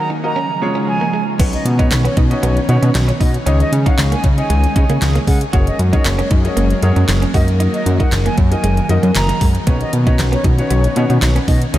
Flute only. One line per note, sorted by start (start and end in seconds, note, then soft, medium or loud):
0.25 0.60 A#5 medium
0.88 1.25 G#5 medium
1.54 1.64 D#5 medium
1.80 1.90 D#5 medium
2.05 2.16 C#5 medium
2.31 2.67 C#5 medium
3.21 3.33 D#5 medium
3.60 3.71 D#5 medium
3.86 3.97 F#5 medium
4.12 4.23 G#5 medium
4.38 4.74 G#5 medium
5.28 5.40 F#5 medium
5.67 5.78 D#5 medium
5.93 6.04 D#5 medium
6.19 6.30 C#5 medium
6.45 6.80 C#5 medium
7.34 7.47 D#5 medium
7.74 7.85 D#5 medium
8.00 8.11 F#5 medium
8.26 8.37 G#5 medium
8.52 8.87 G#5 medium
9.16 9.53 A#5 medium
9.81 9.92 D#5 medium
10.07 10.18 D#5 medium
10.33 10.44 C#5 medium
10.58 10.94 C#5 medium
11.48 11.61 D#5 medium